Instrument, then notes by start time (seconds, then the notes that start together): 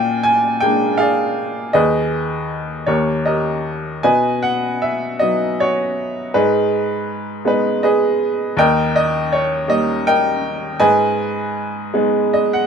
upright piano
Already playing: A#2 D5 F5 G5 G#5
0.23 G#5
0.60 G#3 A#3 D4 G5
0.98 G#4 D5 F5
1.73 D#2 G#4 B4 D#5
2.86 D#2 G4 A#4 C#5
3.25 G4 A#4 D#5
4.03 B2 B4 D#5 G#5
4.43 F#5
4.82 E5
5.19 F#3 B3 D#4 D#5
5.60 F#4 C#5
6.34 G#2 D#4 G#4 B4
7.45 G#3 B3 D#4 B4
7.83 G#4 B4 D#5
8.57 D#2 A#4 D#5 G5
8.96 D#5
9.32 C#5
9.68 G3 A#3 D#4 D#5
10.07 A#4 D#5 G5
10.80 G#2 B4 D#5 G#5
11.94 G#3 B3 D#4
12.34 D#5
12.53 F#5